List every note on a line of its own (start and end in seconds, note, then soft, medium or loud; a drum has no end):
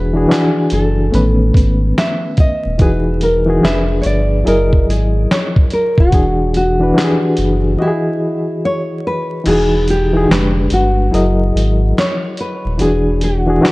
0.00 0.26 E1 loud
0.00 0.13 E3 medium
0.00 0.15 D4 medium
0.00 0.16 F#4 medium
0.00 0.17 G#4 medium
0.00 0.73 B4 medium
0.13 0.26 E3 medium
0.13 0.26 D4 medium
0.13 0.27 F#4 medium
0.13 0.27 G#4 medium
0.28 1.12 E3 medium
0.28 1.13 D4 medium
0.28 1.13 F#4 medium
0.28 1.14 G#5 medium
0.28 snare loud
0.28 closed hi-hat medium
0.32 clap medium
0.70 1.10 F#1 medium
0.70 1.93 A4 medium
0.70 closed hi-hat medium
1.11 1.51 A1 loud
1.11 2.49 D#3 medium
1.11 2.48 A3 medium
1.11 2.48 B3 medium
1.11 2.49 C#4 medium
1.11 2.50 B4 medium
1.11 closed hi-hat medium
1.54 1.93 G#1 medium
1.54 kick medium
1.54 closed hi-hat medium
1.98 2.39 E5 medium
1.98 snare medium
1.98 clap medium
1.98 closed hi-hat medium
2.37 2.82 D#5 medium
2.37 kick medium
2.37 closed hi-hat medium
2.65 2.79 D#1 medium
2.78 3.59 E1 loud
2.78 3.31 E3 medium
2.78 3.31 D#4 medium
2.78 3.32 F#4 medium
2.78 3.32 G#4 medium
2.78 3.23 B4 medium
2.78 kick loud
2.78 closed hi-hat medium
3.21 3.65 A#4 medium
3.21 closed hi-hat medium
3.46 3.59 E3 medium
3.46 3.59 D#4 medium
3.46 3.60 F#4 medium
3.46 3.61 G#4 medium
3.61 4.01 F1 medium
3.61 4.45 F3 medium
3.61 4.46 D4 medium
3.61 4.45 G#4 medium
3.61 4.47 B4 medium
3.61 4.01 E5 loud
3.65 snare loud
3.65 clap medium
3.65 closed hi-hat medium
4.02 4.43 G1 medium
4.02 4.05 C#5 medium
4.02 closed hi-hat medium
4.06 4.48 D5 medium
4.44 4.85 F#1 loud
4.44 5.81 F#3 medium
4.44 5.81 E4 medium
4.44 5.82 G#4 medium
4.44 5.82 A#4 medium
4.44 4.86 A#4 medium
4.44 5.83 D#5 medium
4.44 closed hi-hat medium
4.73 kick medium
4.88 5.26 G#1 medium
4.88 5.32 G#4 medium
4.88 closed hi-hat medium
5.31 5.73 C#5 medium
5.31 snare loud
5.31 clap medium
5.31 closed hi-hat medium
5.56 kick medium
5.70 6.00 A#4 medium
5.70 closed hi-hat medium
5.98 6.11 D#1 medium
5.98 6.55 F#4 medium
5.98 kick loud
6.11 6.92 E1 loud
6.11 6.64 E3 medium
6.11 6.64 D4 medium
6.11 6.65 F#4 medium
6.11 6.65 G#4 medium
6.11 kick loud
6.11 closed hi-hat medium
6.54 7.81 F#4 medium
6.54 closed hi-hat medium
6.80 6.92 E3 medium
6.80 6.93 D4 medium
6.80 6.93 F#4 medium
6.80 6.94 B4 medium
6.94 7.76 E3 medium
6.94 7.79 D4 medium
6.94 7.79 F#4 medium
6.94 7.05 G4 medium
6.94 snare loud
6.99 clap loud
6.99 closed hi-hat medium
7.04 7.84 G#4 medium
7.37 7.76 F#1 medium
7.37 closed hi-hat medium
7.77 9.14 E3 medium
7.77 9.15 F#4 medium
7.77 7.89 G4 medium
7.77 9.15 D#5 medium
7.82 9.02 E4 medium
7.88 9.19 G#4 medium
8.65 9.07 C#5 loud
9.07 9.44 B4 medium
9.44 10.25 E1 loud
9.44 9.97 E3 medium
9.44 9.98 D#4 medium
9.44 9.98 F#4 medium
9.44 9.99 G#4 medium
9.44 closed hi-hat medium
9.44 crash medium
9.49 9.90 G#4 loud
9.88 10.73 G4 loud
9.88 closed hi-hat medium
10.13 10.25 E3 medium
10.13 10.26 D#4 medium
10.13 10.27 F#4 medium
10.13 10.27 G#4 medium
10.28 10.68 F1 loud
10.28 11.12 D3 medium
10.28 11.13 G#3 medium
10.28 11.12 D4 medium
10.28 11.14 B4 medium
10.28 snare loud
10.32 clap loud
10.32 closed hi-hat medium
10.70 11.10 G1 medium
10.70 12.01 F#4 loud
10.70 closed hi-hat medium
11.11 11.51 F#1 loud
11.11 12.48 F#3 medium
11.11 12.48 E4 medium
11.11 12.49 G#4 medium
11.11 12.49 A#4 medium
11.11 12.49 D#5 medium
11.11 closed hi-hat medium
11.55 11.93 G#1 medium
11.55 closed hi-hat medium
11.98 12.40 C#5 loud
11.98 snare loud
11.98 clap medium
11.98 closed hi-hat medium
12.37 12.82 B4 medium
12.37 closed hi-hat medium
12.65 12.78 D#1 medium
12.78 13.59 E1 loud
12.78 13.30 E3 medium
12.78 13.31 D4 medium
12.78 13.32 F#4 medium
12.78 13.32 G#4 medium
12.78 13.23 G#4 loud
12.78 closed hi-hat medium
13.21 13.72 F#4 medium
13.21 closed hi-hat medium
13.46 13.59 E3 medium
13.46 13.59 D4 medium
13.46 13.60 F#4 medium
13.46 13.61 G#4 medium
13.61 13.72 E3 medium
13.61 13.72 D4 medium
13.61 13.72 F#4 medium
13.61 13.72 B4 medium
13.65 snare loud
13.65 clap loud
13.65 closed hi-hat medium